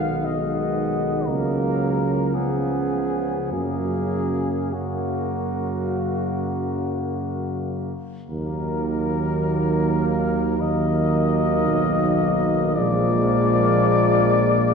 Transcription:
Already playing: B1 D#3 G#3 B3 F5
0.25 D#3 G#3 B3 D#5
1.26 C#2 C#3 F#3 A#3 A#4
2.35 C#3 F3 B3 G#4
3.52 F#2 C#3 F#3 A#3 G#4
4.74 C#3 F#3 A#3 F#4
8.29 D#2 D#3 F#3 A#3 A#4
10.58 D#3 F#3 A#3 D#5
11.68 B1
12.75 A#1 F3 G#3 A#3 D5

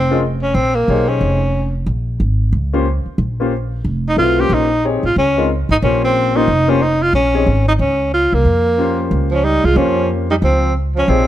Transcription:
Already playing: F1 C4
0.10 C#4 F4 G#4 A#4 D#5
0.42 C#4
0.54 A#1 C4
0.75 A#3
0.88 B1 D#4 G4 G#4 C5 C#5
1.08 C#4
1.21 F1
1.86 A#1
2.20 G#1
2.52 C#2
2.73 A#3 C#4 F4 G4 C5
3.05 muted upright bass stroke
3.18 A#1
3.40 A#3 C#4 F4 G4 C5
3.84 F1
4.09 D#4
4.17 B1 A3 C4 E4 F4 F#4 B4
4.38 A#3 C#4 F4 G4 C5
4.50 A#1
4.54 D#4
4.84 C4 D#4 G4 G#4 C#5
5.03 A1 F4
5.16 C#2 C#4
5.37 G#3 C4 D#4 F4 A#4
5.69 A1 D#4
5.82 A#1 A#3 C#4 F4 G4 C5
6.05 C4
6.35 A#3 C#4 D#4 F4 G4 C5
6.48 F1
6.68 A#3 C#4 F4 G4 C5
6.82 D#4
7.02 F4
7.13 A#1 C#4
7.34 C4 D#4 G4 G#4 C#5
7.47 G#1
7.68 D#4
7.79 C#2 C#4
8.13 F4
8.32 C2 A#3
8.45 F2
8.78 A#3 C#4 F4 G4 C5
9.11 C#2
9.31 F3 C#4
9.44 G3 D#4
9.64 C2 G#3 F4
9.76 F2 F3 A#3 C#4 F4 G4 C5
10.31 G3 D#4
10.42 C#2 F3 C4
10.95 F3 C#4
11.08 A#1 C3 F3 C4 D#4 G4 G#4 C#5

